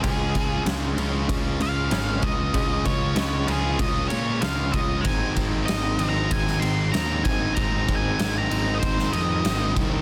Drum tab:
RD |x-x-x-x-x-x-x-x-|x-x-x-x-x-x-x-x-|x-x-x-x-x-x-x-x-|x-x-x-x-x-x-x-x-|
SD |----o-------o---|----o-------o---|----o----o--o---|----o----o--o---|
BD |o-o-----o-----o-|o-o-----o-----o-|o-o-----o-----o-|o-o-----o-----o-|